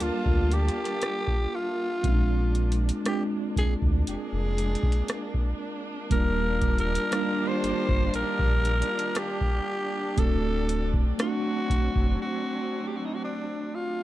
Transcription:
0.00 0.11 D2 soft
0.00 2.00 G3 medium
0.00 0.79 A#3 medium
0.00 2.00 A#3 medium
0.00 0.80 D4 medium
0.00 2.00 D4 medium
0.00 0.80 F4 medium
0.00 2.00 F4 medium
0.00 0.55 F4 medium
0.00 0.81 A#4 medium
0.00 2.00 A5 medium
0.00 closed hi-hat medium
0.26 0.70 D2 medium
0.26 kick medium
0.51 1.57 G4 loud
0.51 closed hi-hat medium
0.69 closed hi-hat medium
0.85 closed hi-hat medium
1.02 cross-stick loud
1.02 closed hi-hat medium
1.28 kick medium
1.55 2.80 F4 medium
2.03 2.92 A#1 loud
2.03 2.94 G#3 medium
2.03 6.06 G#3 medium
2.03 10.13 A#3 medium
2.03 2.95 C4 medium
2.03 2.11 C#4 medium
2.03 14.03 D4 medium
2.03 2.96 F4 medium
2.03 kick loud
2.03 closed hi-hat medium
2.12 2.98 D4 medium
2.55 closed hi-hat soft
2.72 closed hi-hat medium
2.89 closed hi-hat medium
3.04 4.86 G#3 medium
3.04 4.87 C4 medium
3.04 4.87 D4 medium
3.04 4.88 F4 medium
3.04 3.23 G4 medium
3.04 cross-stick loud
3.04 closed hi-hat medium
3.56 3.67 D2 soft
3.56 3.74 G#4 medium
3.56 kick medium
3.56 closed hi-hat medium
3.82 4.04 D2 medium
3.82 kick medium
4.07 4.17 F1 soft
4.07 5.57 G#4 medium
4.07 closed hi-hat medium
4.33 4.77 F1 medium
4.58 closed hi-hat medium
4.75 closed hi-hat medium
4.83 kick medium
4.92 closed hi-hat medium
5.08 cross-stick loud
5.08 closed hi-hat medium
5.34 kick medium
6.10 6.98 D#1 loud
6.10 10.14 D#3 medium
6.10 7.01 G3 medium
6.10 7.01 A#3 medium
6.10 7.02 D4 medium
6.10 10.14 F4 medium
6.10 7.03 F4 medium
6.10 10.14 G4 medium
6.10 6.75 A#4 medium
6.10 kick loud
6.10 closed hi-hat medium
6.62 kick medium
6.62 closed hi-hat soft
6.78 7.49 A#4 loud
6.78 closed hi-hat medium
6.95 closed hi-hat medium
7.11 8.93 G3 medium
7.11 8.93 A#3 medium
7.11 8.94 D4 medium
7.11 8.95 F4 medium
7.11 cross-stick loud
7.11 closed hi-hat medium
7.48 8.15 C5 loud
7.63 7.73 G1 soft
7.63 closed hi-hat medium
7.89 8.11 G1 medium
7.89 kick medium
8.14 8.24 A#1 soft
8.14 9.19 A#4 loud
8.14 closed hi-hat medium
8.39 8.83 A#1 medium
8.39 kick medium
8.65 closed hi-hat medium
8.82 closed hi-hat medium
8.99 closed hi-hat medium
9.15 10.20 G4 loud
9.15 cross-stick loud
9.15 closed hi-hat medium
9.41 kick medium
10.16 11.05 D1 loud
10.16 14.03 F#3 medium
10.16 11.07 A3 medium
10.16 14.03 C4 medium
10.16 11.08 C4 medium
10.16 11.09 D4 medium
10.16 10.93 A4 medium
10.16 kick loud
10.16 closed hi-hat medium
10.20 11.09 F#4 medium
10.69 closed hi-hat medium
10.94 kick medium
11.18 13.00 A3 medium
11.18 13.00 C4 medium
11.18 13.01 D4 medium
11.18 12.18 F#4 medium
11.18 13.02 F#4 medium
11.18 cross-stick loud
11.18 closed hi-hat medium
11.70 11.80 F#1 soft
11.70 kick medium
11.70 closed hi-hat medium
11.96 12.17 F#1 medium
11.96 kick medium
12.22 12.89 F#4 medium
12.87 12.98 G4 medium
12.97 13.07 F#4 medium
13.05 13.16 D#4 medium
13.15 13.23 F#4 medium
13.24 13.76 D4 medium
13.75 14.03 F4 loud

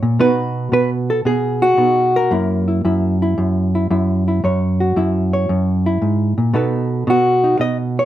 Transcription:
0.00 0.19 A#2 medium
0.00 0.18 A#3 soft
0.00 0.18 E4 soft
0.00 0.20 C#5 medium
0.19 0.71 B2 medium
0.19 2.29 B3 soft
0.19 1.77 D#4 soft
0.19 1.10 F#4 soft
0.19 0.72 B4 loud
0.72 1.24 B2 medium
0.72 0.89 B4 medium
1.10 1.20 A4 medium
1.25 1.76 B2 medium
1.25 2.15 G#4 medium
1.62 2.31 F#4 medium
1.77 2.31 B2 medium
1.77 2.29 D#4 soft
2.16 4.79 A#4 medium
2.31 2.84 F#2 medium
2.31 4.40 A#3 soft
2.31 2.67 E4 soft
2.68 2.85 E4 soft
2.85 3.37 F#2 medium
2.85 3.22 E4 soft
3.22 3.74 E4 soft
3.38 3.89 F#2 medium
3.75 3.90 E4 soft
3.90 4.43 F#2 medium
3.90 4.26 E4 soft
4.28 4.41 E4 soft
4.44 4.95 F#2 medium
4.44 5.32 C#5 medium
4.80 6.55 F#4 medium
4.96 5.48 F#2 medium
4.96 5.85 E4 medium
5.33 6.52 C#5 medium
5.49 6.01 F#2 medium
5.86 6.52 E4 medium
6.02 6.37 G#2 medium
6.38 6.54 A#2 medium
6.54 7.07 B2 medium
6.54 8.05 B3 medium
6.54 7.43 D#4 soft
6.54 8.05 A4 soft
6.54 7.10 B4 soft
7.07 7.59 B2 medium
7.07 7.60 F#4 medium
7.44 8.05 D#4 soft
7.59 8.05 B2 medium
7.59 7.77 D#5 medium
7.99 8.05 C#5 medium

